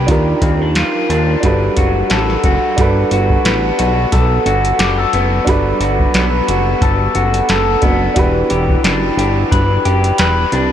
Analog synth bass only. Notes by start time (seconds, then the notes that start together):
0.08 D#2
0.42 D#2
1.10 D#2
1.43 G1
1.77 F#1
2.10 A1
2.44 F#1
2.78 G1
3.12 G1
3.45 A1
3.79 B1
4.12 B1
4.46 G1
4.79 F#1
5.13 F#1
5.47 G1
5.80 G1
6.14 B1
6.48 F#1
6.82 G1
7.15 F#1
7.50 F#1
7.82 F#1
8.16 E1
8.51 E1
8.84 F#1
9.17 G1
9.52 G1
9.85 F#1
10.19 E1
10.52 C2